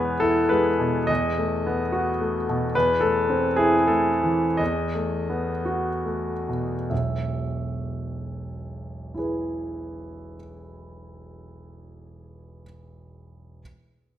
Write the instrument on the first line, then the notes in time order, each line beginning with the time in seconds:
grand piano
Already playing: E2 G#3 B3 B4 C#5
0.20 E4 A4
0.49 G#3 B4
0.80 B2
1.07 E2 D#5
1.38 A3
1.66 B3
1.92 F#4
2.21 A3
2.49 B2
2.75 E2 B4
3.01 A3 A4
3.29 C4
3.56 E4 G#4
3.88 A3 A4
4.23 E3
4.57 E2 D#5
4.95 A3
5.30 B3
5.65 F#4
6.05 A3
6.49 B2
6.90 E1 B1 E5
9.14 E4 G#4
9.19 B4